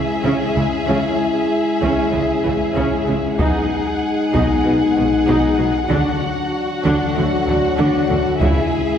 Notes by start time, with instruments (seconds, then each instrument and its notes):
Already playing: french horn section G#3 E4, violin section G#4 E5
0.24 double bass section C#2, cello section C#3, viola section C#4
0.55 double bass section C#2, cello section C#3, viola section G#3
0.87 double bass section C#2, cello section C#3, viola section C#4
1.82 double bass section C#2, cello section C#3, viola section C#4
2.12 double bass section C#2, cello section C#3, viola section G#3
2.43 double bass section C#2, cello section C#3, viola section E3
2.75 double bass section C#2, cello section C#3, viola section C#4
3.07 double bass section C#2, cello section C#3, viola section G#3
3.38 double bass section B1, cello section B2, french horn section G#3, viola section D#4, violin section G#4 F#5, taiko
3.42 french horn section D#4
4.33 double bass section B1, cello section B2, viola section D#4, taiko
4.64 double bass section B1, cello section B2, viola section B3
4.96 double bass section B1, cello section B2, viola section G#3
5.27 double bass section B1, cello section B2, viola section D#4
5.58 double bass section B1, cello section B2, viola section B3
5.89 double bass section D2, cello section D3, french horn section F#3 D4, viola section D4, violin section F#4
6.84 double bass section D2, cello section D3, viola section D4
7.15 double bass section D2, cello section D3, viola section A3
7.46 double bass section D2, cello section D3, viola section F#3
7.78 double bass section D2, cello section D3, viola section D4
8.08 double bass section D2, cello section D3, viola section A3
8.40 double bass section C#2, cello section C#3, timpani C#3, french horn section G#3 E4, viola section E4, violin section G#4 E5, taiko